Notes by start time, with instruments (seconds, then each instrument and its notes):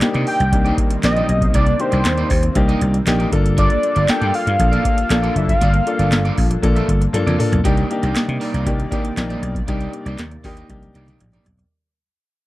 Already playing: analog synth pad C3 D#3 G3 A#3 C4
0.01 grand piano A#3 D4 D#4 G4, muted clean electric guitar stroke, muted slap bass stroke, snare, clap, closed hi-hat
0.14 slap bass C3, clean electric guitar A#3 D#4 G4 D5, closed hi-hat
0.27 analog synth lead G5, muted clean electric guitar stroke, open hi-hat
0.40 slap bass C2, muted clean electric guitar stroke, closed hi-hat
0.52 slap bass C2, grand piano A#3 D4 D#4 G4, muted clean electric guitar stroke, kick, closed hi-hat
0.65 clean electric guitar A#3 D#4 G4 D5, closed hi-hat
0.78 muted clean electric guitar stroke, kick, closed hi-hat
0.90 muted clean electric guitar stroke, closed hi-hat
1.03 slap bass A#1, grand piano A#3 C4 D#4 G4, analog synth lead D#5, muted clean electric guitar stroke, snare, clap, closed hi-hat
1.16 clean electric guitar A#3 D#4 G4 D5, closed hi-hat
1.29 slap bass B1, muted clean electric guitar stroke, closed hi-hat
1.41 muted clean electric guitar stroke, kick, closed hi-hat
1.54 slap bass C2, clean electric guitar A#3 D#4 G4 D5, analog synth lead D5, kick, closed hi-hat
1.67 muted clean electric guitar stroke, closed hi-hat
1.79 grand piano A#3 D4 D#4 G4, analog synth lead C5, muted clean electric guitar stroke, closed hi-hat
1.92 slap bass C2, clean electric guitar A#3 D#4 G4 D5, closed hi-hat
2.05 slap bass D#2, muted clean electric guitar stroke, snare, clap, closed hi-hat
2.17 clean electric guitar A#3 D#4 G4 D5, closed hi-hat
2.30 slap bass D#2, muted clean electric guitar stroke, kick, open hi-hat
2.43 muted clean electric guitar stroke, closed hi-hat
2.55 slap bass C2, grand piano A#3 D4 D#4 G4, muted clean electric guitar stroke, kick, closed hi-hat
2.68 clean electric guitar A#3 D#4 G4 D#5, closed hi-hat
2.81 slap bass C2, muted clean electric guitar stroke, closed hi-hat
2.94 muted clean electric guitar stroke, closed hi-hat
3.06 slap bass A#1, grand piano A#3 D4 D#4 G4, muted clean electric guitar stroke, snare, clap, closed hi-hat
3.19 clean electric guitar A#3 D#4 G4 D5, closed hi-hat
3.32 slap bass G1, grand piano A#3 D4 F4 A4, analog synth pad A#3 D4 F4 A4, muted clean electric guitar stroke, kick, closed hi-hat
3.45 muted clean electric guitar stroke, closed hi-hat
3.57 clean electric guitar A#3 F4 A4 D5, analog synth lead D5, kick, closed hi-hat
3.70 muted clean electric guitar stroke, closed hi-hat
3.83 muted clean electric guitar stroke, closed hi-hat
3.95 slap bass G1, clean electric guitar A#3 F4 A4 D5, closed hi-hat
4.08 grand piano A#3 D4 F4 A4, analog synth lead G5, muted clean electric guitar stroke, muted slap bass stroke, snare, clap, closed hi-hat
4.21 slap bass G2, clean electric guitar A#3 F4 A4 D5, closed hi-hat
4.34 analog synth lead F5, muted clean electric guitar stroke, open hi-hat
4.46 slap bass G2, muted clean electric guitar stroke, closed hi-hat
4.59 slap bass A#1, grand piano A#3 D4 F4 A4, muted clean electric guitar stroke, kick, closed hi-hat
4.72 clean electric guitar A#3 F4 A4 D5, closed hi-hat
4.85 muted clean electric guitar stroke, kick, closed hi-hat
4.97 muted clean electric guitar stroke, closed hi-hat
5.10 slap bass A#1, grand piano A#3 D4 F4 A4, muted clean electric guitar stroke, snare, clap, closed hi-hat
5.23 clean electric guitar A#3 F4 A4 D5, closed hi-hat
5.35 slap bass F#1, analog synth lead E5, muted clean electric guitar stroke, closed hi-hat
5.48 analog synth lead F5, muted clean electric guitar stroke, kick, closed hi-hat
5.61 slap bass G1, clean electric guitar A#3 F4 A4 D5, kick, closed hi-hat
5.74 muted clean electric guitar stroke, closed hi-hat
5.86 grand piano A#3 D4 F4 A4, muted clean electric guitar stroke, closed hi-hat
5.99 slap bass G1, clean electric guitar A#3 F4 A4 D5, closed hi-hat
6.12 slap bass G1, muted clean electric guitar stroke, snare, clap, closed hi-hat
6.25 clean electric guitar A#3 F4 A4 D5, closed hi-hat
6.38 slap bass A#1, muted clean electric guitar stroke, kick, open hi-hat
6.50 muted clean electric guitar stroke, closed hi-hat
6.62 slap bass A#1, grand piano A#3 D4 F4 A4, muted clean electric guitar stroke, kick, closed hi-hat
6.76 clean electric guitar A#3 F4 A4 E5, closed hi-hat
6.88 slap bass G1, muted clean electric guitar stroke, kick, closed hi-hat
7.01 muted clean electric guitar stroke, closed hi-hat
7.13 slap bass G2, grand piano A#3 D4 F4 A4, muted clean electric guitar stroke, closed hi-hat, high tom
7.26 slap bass F2, clean electric guitar A#3 F4 A4 D5, closed hi-hat, mid tom
7.38 grand piano A#3 D4 F4 A4, muted clean electric guitar stroke, mid tom, open hi-hat
7.52 slap bass B1, muted clean electric guitar stroke, closed hi-hat, floor tom
7.64 slap bass C2, analog synth pad C3 D#3 G3 A#3 D5, grand piano A#3 D4 D#4 G4, clean electric guitar A#3 D#4 G4 D5, kick, closed hi-hat
7.77 closed hi-hat
7.90 grand piano A#3 D4 D#4 G4, muted clean electric guitar stroke, closed hi-hat
8.02 slap bass C2, clean electric guitar A#3 D#4 G4 D#5, closed hi-hat
8.16 muted clean electric guitar stroke, muted slap bass stroke, snare, clap, closed hi-hat
8.28 slap bass C3, muted clean electric guitar stroke, closed hi-hat
8.40 clean electric guitar A#3 D#4 G4 D5, open hi-hat
8.53 slap bass C2, clean electric guitar A#3 D#4 G4 D5, closed hi-hat
8.66 slap bass C2, grand piano A#3 D4 D#4 G4, kick, closed hi-hat
8.79 muted clean electric guitar stroke, closed hi-hat
8.91 grand piano A#3 D4 D#4 G4, clean electric guitar A#3 D#4 G4 D5, kick, closed hi-hat
9.04 muted clean electric guitar stroke, closed hi-hat
9.17 slap bass A#1, grand piano A#3 D4 D#4 G4, muted clean electric guitar stroke, snare, clap, closed hi-hat
9.30 clean electric guitar A#3 D#4 G4 D5, closed hi-hat
9.42 slap bass B1, muted clean electric guitar stroke, closed hi-hat
9.55 muted clean electric guitar stroke, kick, closed hi-hat
9.68 slap bass C2, grand piano A#3 D4 D#4 G4, clean electric guitar A#3 D#4 G4 D5, kick, closed hi-hat
9.81 closed hi-hat
9.93 muted clean electric guitar stroke, closed hi-hat
10.06 slap bass C2, clean electric guitar A#3 D#4 G4 D5, closed hi-hat
10.18 slap bass D#2, muted clean electric guitar stroke, snare, clap, closed hi-hat
10.31 muted clean electric guitar stroke, closed hi-hat
10.44 slap bass D#2, clean electric guitar A#3 D#4 G4 D#5, grand piano A#3 D4 D#4 G4, kick, open hi-hat
10.57 clean electric guitar A#3 D#4 G4 D#5, closed hi-hat
10.69 slap bass C2, grand piano A#3 D4 D#4 G4, muted clean electric guitar stroke, kick, closed hi-hat, high tom
10.82 muted clean electric guitar stroke, closed hi-hat, high tom
10.95 slap bass C2, clean electric guitar A#3 D#4 G4 D5, closed hi-hat
11.07 clean electric guitar A#3 D#4 G4 D5, closed hi-hat, mid tom
11.20 slap bass A#1, muted clean electric guitar stroke, closed hi-hat, mid tom
11.33 clean electric guitar A#3 D#4 G4 D5, closed hi-hat
11.46 slap bass B1, muted clean electric guitar stroke, closed hi-hat, floor tom
11.58 muted clean electric guitar stroke, closed hi-hat, floor tom